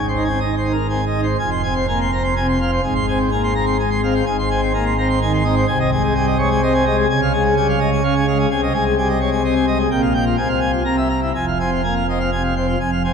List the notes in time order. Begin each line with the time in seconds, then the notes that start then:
Already playing: G#1 G#2
0.08 C5
0.17 D#4
0.24 C4 G#5
0.40 D#4 D#5
0.57 C5
0.65 D#4
0.72 A#4
0.89 C4 G#5
1.06 D#5
1.15 D#4
1.23 C5
1.39 F1 F2 G#5
1.51 C6
1.63 C4 G#5
1.75 C5
1.88 A#3 G#5
2.00 C6
2.12 C4 A#5
2.24 C6
2.36 C3 G#5
2.49 C6
2.60 C4 F5
2.72 C5
2.83 G#1 G#2 G#5
2.95 C6
3.08 C4 G#5
3.20 C5
3.31 A#3 G#5
3.43 C6
3.55 C4 A#5
3.66 C6
3.79 G#3 G#5
3.91 C6
4.03 C4 F5
4.15 C5
4.26 G#1 G#2 G#5
4.39 C6
4.50 C4 G#5
4.62 C5
4.73 A#3 G#5
4.86 C6
4.98 C4 A#5
5.09 C6
5.22 D#3 G#5
5.33 C6
5.44 C4 D#5
5.56 C5
5.68 C2 C3 G#5
5.80 D#5
5.92 G#3 G#5
6.03 G#4
6.15 G3 G#5
6.27 D#5
6.39 G#3 C#5
6.51 G#5
6.62 C4 D#5
6.74 G#5
6.86 G#3 D#5
6.97 G#4
7.10 C#2 C#3 G#5
7.22 F5
7.33 G#3 G#5
7.44 G#4
7.56 G3 G#5
7.69 F5
7.80 G#3 D#5
7.93 G#5
8.03 C#4 F5
8.16 G#5
8.27 G#3 F5
8.39 G#4
8.50 C2 C3 G#5
8.63 D#5
8.74 G#3 G#5
8.86 G#4
8.98 G3 G#5
9.09 D#5
9.20 G#3 C#5
9.32 G#5
9.44 C4 D#5
9.55 G#5
9.67 G#3 D#5
9.80 G#4
9.90 A#1 A#2 G5
10.02 F5
10.14 G5
10.26 F4
10.37 C2 C3 G#5
10.48 F5
10.60 G#5
10.72 F4
10.84 C2 C3 A#5
10.97 E5
11.09 A#5
11.22 E4
11.34 F1 F2 G#5
11.48 F5
11.60 C4 G#5
11.72 F4
11.84 A#3 G#5
11.96 F5
12.09 C4 D#5
12.20 F5
12.32 C3 G#5
12.44 F5
12.56 C4 C5
12.68 F4
12.80 F1 F2 G#5
12.92 F5
13.04 C4 G#5